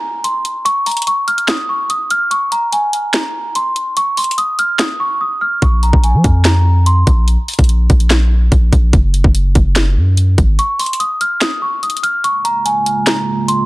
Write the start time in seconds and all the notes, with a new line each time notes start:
Already playing: A#5
0.24 C6, closed hi-hat
0.45 closed hi-hat
0.65 C#6, closed hi-hat
0.86 A#5, closed hi-hat, open hi-hat
0.92 closed hi-hat
0.97 closed hi-hat
1.02 closed hi-hat
1.07 C#6, closed hi-hat
1.28 F6, closed hi-hat
1.38 closed hi-hat
1.48 D#6, snare, clap, closed hi-hat
1.69 C#6
1.90 D#6, closed hi-hat
2.10 F6, closed hi-hat
2.31 C#6, closed hi-hat
2.52 A#5, closed hi-hat
2.73 G#5, closed hi-hat
2.93 closed hi-hat
3.14 snare, clap, closed hi-hat
3.55 C6, closed hi-hat
3.76 closed hi-hat
3.97 C#6, closed hi-hat
4.17 C6, closed hi-hat, open hi-hat
4.24 closed hi-hat
4.31 closed hi-hat
4.38 D#6, closed hi-hat
4.59 F6, closed hi-hat
4.79 D#6, snare, clap, closed hi-hat
5.00 C#6
5.21 D#6
5.41 F6
5.62 A#1 C#6, kick, closed hi-hat
5.83 A#5, closed hi-hat
5.93 A#1, kick
6.04 G#5, closed hi-hat
6.14 F3
6.24 F2, kick, closed hi-hat
6.45 A#5, snare, clap, closed hi-hat
6.86 C6, closed hi-hat
7.07 A#1, kick, closed hi-hat
7.28 closed hi-hat
7.48 closed hi-hat, open hi-hat
7.54 closed hi-hat
7.59 A#1, kick, closed hi-hat
7.64 closed hi-hat
7.69 closed hi-hat
7.90 A#1, kick, closed hi-hat
8.00 closed hi-hat
8.10 snare, clap, closed hi-hat
8.52 A#1, kick, closed hi-hat
8.73 A#1, kick, closed hi-hat
8.93 F#1, kick, closed hi-hat
9.14 closed hi-hat
9.24 F#1, kick
9.35 closed hi-hat
9.55 F#1, kick, closed hi-hat
9.76 snare, clap, closed hi-hat
9.97 F#2
10.17 closed hi-hat
10.38 G#1, kick, closed hi-hat
10.59 C#6, closed hi-hat
10.79 C6, closed hi-hat, open hi-hat
10.86 closed hi-hat
10.93 closed hi-hat
11.00 D#6, closed hi-hat
11.21 F6, closed hi-hat
11.41 D#6, snare, clap, closed hi-hat
11.62 C#6
11.83 D#6, closed hi-hat
11.90 closed hi-hat
11.97 closed hi-hat
12.03 F6, closed hi-hat
12.24 C#3 G#3 A#3 F4 C#6, closed hi-hat
12.45 A#5, closed hi-hat
12.65 G#5, closed hi-hat
12.86 closed hi-hat
13.07 snare, clap, closed hi-hat
13.48 C6, closed hi-hat